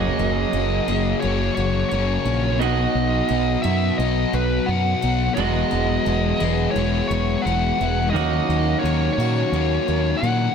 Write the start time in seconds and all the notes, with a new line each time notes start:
Already playing: F#2 C#3 F#3 A#3 C#4 G#4 D#5
0.19 F#1 A#3
0.52 F#1 C#3 F#3 A#3 C#4
0.88 F#1 F#3 A#3 C#4 G#4
1.20 F#1 C#3 F#3 A#3 C#5
1.25 C#4
1.55 F#1 F#3 C#5
1.89 F#1 C#3 F#3 C#5
1.94 A#3 C#4
2.25 A#1 F#3 A#3 C#4
2.60 B1 B2 F#3 B3 F#4 D#5
2.64 D#4
2.95 B1
3.29 B1 B2 F#3 B3 D#4
3.62 F#2 B3 D#4 F#4 E5
3.67 F#3
3.98 B1 B2 F#3 B3 D#4 D#5
4.33 B1 F#3 B4
4.66 F#2 B2 F#3 B3 F#5
4.70 D#4
5.02 B1 F#3 B3 D#4
5.34 E1 E2 B2 E3 F#3 G#3 D#5
5.39 B3 E4 F#4
5.71 E1 B3
6.06 E1 E3 G#3 B3 E4
6.40 E1 G#3 B3 E4 G#4
6.71 E3 G#3 C#5
6.75 E1 B3 E4
7.08 E1 F#3 C#5
7.42 E1 E3 G#3 B3 F#5
7.46 E4
7.77 E1 G#3 B3 E4
8.10 D#3 F#3 D#5
8.14 D#2 A#3 C#4 D#4 F#4
8.49 D#2 A#3
8.79 D#2 D#3 F#3 C#5
8.85 A#3 C#4 D#4
9.13 C#5
9.17 A#2 F#3 A#3 D#4 F#4
9.52 D#2 D#3 F#3 A#3 C#4 D#4
9.88 D#2 A#3
10.17 F#5
10.22 A#2 D#3 F#3 A#3 D#4